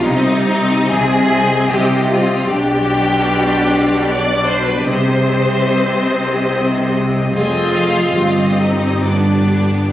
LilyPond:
<<
  \new Staff \with { instrumentName = "Violin section" } { \time 3/4 \key c \minor \tempo 4 = 73 ees''8 ees''4 ees''4 ees''8 | d''2. | ees''2. | ees''4 ees''4 d''4 | }
  \new Staff \with { instrumentName = "Violin section" } { \time 3/4 \key c \minor ees'4 aes'4 g'8 f'8 | g'2 d''8 c''16 b'16 | c''2~ c''8 r8 | f'4. ees'8 d'4 | }
  \new Staff \with { instrumentName = "Viola section" } { \time 3/4 \key c \minor << { g'8 g'4 g'4 g'8 | g'2.~ | g'2. | aes'4 g'4 g'4 | } \\ { c'8 c'4 c'4 c'8 | d'2. | c'2. | c'4 c'4 b4 | } >> }
  \new Staff \with { instrumentName = "Cello section" } { \clef bass \time 3/4 \key c \minor c4 c4 c4 | b,2. | c2. | f,4 g,2 | }
  \new Staff \with { instrumentName = "Double bass section" } { \clef bass \time 3/4 \key c \minor c,4 c,4 c,4 | b,,2. | c,2. | f,,4 g,,2 | }
>>